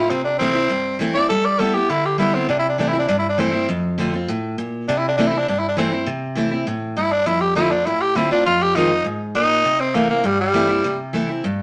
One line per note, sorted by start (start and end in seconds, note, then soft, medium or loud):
0.00 0.11 C4 medium
0.00 0.12 E4 medium
0.10 0.67 C3 medium
0.10 0.24 C4 loud
0.24 0.38 D4 medium
0.39 0.54 E3 medium
0.39 0.55 A3 medium
0.39 0.97 C4 loud
0.39 0.55 C4 loud
0.39 0.53 E4 medium
0.55 0.70 C4 medium
0.55 0.69 E4 medium
0.69 1.26 G2 medium
0.99 1.14 E3 medium
0.99 1.14 A3 medium
0.99 1.15 C4 medium
0.99 1.13 E4 loud
1.14 1.30 C4 medium
1.14 1.29 E4 medium
1.14 1.28 D5 loud
1.29 1.58 G3 loud
1.29 1.47 A4 loud
1.45 1.61 D5 medium
1.59 1.74 G3 medium
1.59 1.74 B3 medium
1.59 1.73 E4 medium
1.59 1.76 A4 medium
1.74 1.90 B3 medium
1.74 1.89 E4 medium
1.74 1.91 G4 loud
1.90 2.46 D3 medium
1.90 2.07 E4 loud
2.05 2.19 G4 medium
2.18 2.33 G3 medium
2.18 2.34 B3 loud
2.18 2.36 E4 loud
2.18 2.32 E4 medium
2.34 2.49 B3 medium
2.34 2.49 C4 loud
2.34 2.48 E4 medium
2.49 3.06 C3 medium
2.49 2.59 D4 medium
2.59 2.68 E4 medium
2.69 2.79 D4 medium
2.78 2.93 E3 medium
2.78 2.93 A3 medium
2.78 2.94 C4 medium
2.78 2.90 D4 medium
2.78 2.92 E4 loud
2.89 2.98 E4 medium
2.93 3.09 C4 soft
2.93 3.08 E4 medium
2.99 3.08 D4 medium
3.08 3.65 G2 medium
3.08 3.18 D4 medium
3.19 3.28 E4 medium
3.29 3.41 D4 medium
3.38 3.53 E3 medium
3.38 3.53 A3 medium
3.38 3.68 C4 loud
3.38 3.53 C4 loud
3.38 3.51 E4 loud
3.52 3.69 C4 medium
3.52 3.67 E4 medium
3.69 4.25 F2 loud
3.98 4.12 D3 medium
3.98 4.13 A3 medium
3.98 4.13 C4 loud
3.98 4.12 F4 loud
4.13 4.29 C4 soft
4.13 4.28 F4 medium
4.28 4.57 A2 medium
4.58 4.86 A#2 medium
4.88 5.45 C3 loud
4.88 5.00 D4 medium
4.99 5.07 E4 medium
5.08 5.17 D4 medium
5.17 5.32 E3 medium
5.17 5.33 A3 medium
5.17 5.33 C4 medium
5.17 5.29 D4 medium
5.17 5.31 E4 loud
5.28 5.40 E4 medium
5.33 5.48 C4 medium
5.33 5.47 E4 medium
5.38 5.48 D4 medium
5.48 6.05 G2 medium
5.48 5.60 D4 medium
5.59 5.68 E4 medium
5.68 5.77 D4 medium
5.77 5.91 E3 medium
5.77 5.92 A3 loud
5.77 6.07 C4 medium
5.77 5.92 C4 loud
5.77 5.90 E4 medium
5.92 6.07 C4 medium
5.92 6.06 E4 medium
6.06 6.64 C3 loud
6.35 6.51 E3 medium
6.35 6.51 A3 medium
6.35 6.52 C4 medium
6.35 6.50 E4 loud
6.51 6.67 C4 soft
6.51 6.66 E4 medium
6.67 6.95 A2 medium
6.97 7.25 G2 medium
6.97 7.14 E4 loud
7.12 7.28 D4 medium
7.26 7.83 F2 loud
7.26 7.42 E4 loud
7.41 7.55 G4 medium
7.55 7.70 D3 medium
7.55 7.71 A3 medium
7.55 7.71 C4 loud
7.55 7.72 E4 loud
7.55 7.70 F4 medium
7.71 7.86 C4 soft
7.71 7.88 D4 medium
7.71 7.85 F4 medium
7.86 8.43 A2 medium
7.86 8.03 E4 medium
8.01 8.18 G4 medium
8.15 8.30 D3 medium
8.15 8.30 A3 medium
8.15 8.31 C4 medium
8.15 8.31 E4 medium
8.15 8.30 F4 medium
8.31 8.46 C4 soft
8.31 8.45 D4 medium
8.31 8.45 F4 medium
8.46 9.03 F2 loud
8.46 8.63 F4 loud
8.62 8.77 G4 medium
8.76 8.90 D#3 medium
8.76 8.91 G#3 medium
8.76 8.91 C4 medium
8.76 9.05 D#4 loud
8.76 8.89 F4 loud
8.90 9.06 C4 soft
8.90 9.05 F4 medium
9.05 9.33 G#2 medium
9.35 9.63 A#2 medium
9.35 9.82 D#4 loud
9.65 10.22 C3 loud
9.80 9.96 C4 loud
9.94 10.09 E3 medium
9.94 10.09 A3 loud
9.94 10.09 A#3 medium
9.94 10.10 C4 medium
9.94 10.08 E4 loud
10.09 10.27 A#3 medium
10.09 10.25 C4 medium
10.09 10.24 E4 medium
10.24 10.81 G2 loud
10.24 10.40 G3 medium
10.40 10.98 G3 loud
10.53 10.68 E3 medium
10.53 10.69 A3 loud
10.53 10.69 C4 medium
10.53 10.67 E4 loud
10.69 10.85 C4 medium
10.69 10.83 E4 medium
10.84 11.41 C3 loud
11.13 11.28 E3 medium
11.13 11.28 A3 medium
11.13 11.29 C4 medium
11.13 11.28 E4 medium
11.29 11.45 C4 soft
11.29 11.43 E4 medium
11.44 11.62 G2 medium